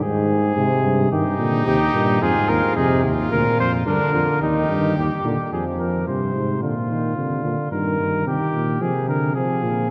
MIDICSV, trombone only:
0, 0, Header, 1, 2, 480
1, 0, Start_track
1, 0, Tempo, 548948
1, 975, Time_signature, 4, 2, 24, 8
1, 8664, End_track
2, 0, Start_track
2, 0, Title_t, "Trombone"
2, 0, Program_c, 0, 57
2, 20, Note_on_c, 0, 44, 90
2, 494, Note_off_c, 0, 44, 0
2, 500, Note_on_c, 0, 48, 82
2, 967, Note_off_c, 0, 48, 0
2, 977, Note_on_c, 0, 51, 75
2, 1084, Note_off_c, 0, 51, 0
2, 1211, Note_on_c, 0, 50, 68
2, 1438, Note_off_c, 0, 50, 0
2, 1443, Note_on_c, 0, 48, 66
2, 1553, Note_off_c, 0, 48, 0
2, 1691, Note_on_c, 0, 46, 68
2, 1927, Note_off_c, 0, 46, 0
2, 1935, Note_on_c, 0, 44, 72
2, 2405, Note_off_c, 0, 44, 0
2, 2419, Note_on_c, 0, 48, 74
2, 2724, Note_off_c, 0, 48, 0
2, 2898, Note_on_c, 0, 46, 72
2, 3346, Note_off_c, 0, 46, 0
2, 3378, Note_on_c, 0, 50, 69
2, 3859, Note_on_c, 0, 51, 71
2, 3872, Note_off_c, 0, 50, 0
2, 4341, Note_off_c, 0, 51, 0
2, 4346, Note_on_c, 0, 51, 60
2, 4454, Note_off_c, 0, 51, 0
2, 4583, Note_on_c, 0, 50, 69
2, 4693, Note_off_c, 0, 50, 0
2, 4828, Note_on_c, 0, 53, 67
2, 5307, Note_on_c, 0, 48, 66
2, 5320, Note_off_c, 0, 53, 0
2, 5776, Note_off_c, 0, 48, 0
2, 5781, Note_on_c, 0, 50, 62
2, 5892, Note_off_c, 0, 50, 0
2, 6020, Note_on_c, 0, 51, 63
2, 6256, Note_off_c, 0, 51, 0
2, 6261, Note_on_c, 0, 50, 61
2, 6736, Note_off_c, 0, 50, 0
2, 6741, Note_on_c, 0, 51, 59
2, 7216, Note_off_c, 0, 51, 0
2, 7227, Note_on_c, 0, 51, 62
2, 7697, Note_off_c, 0, 51, 0
2, 7707, Note_on_c, 0, 48, 69
2, 8173, Note_off_c, 0, 48, 0
2, 8185, Note_on_c, 0, 53, 59
2, 8652, Note_off_c, 0, 53, 0
2, 8664, End_track
0, 0, End_of_file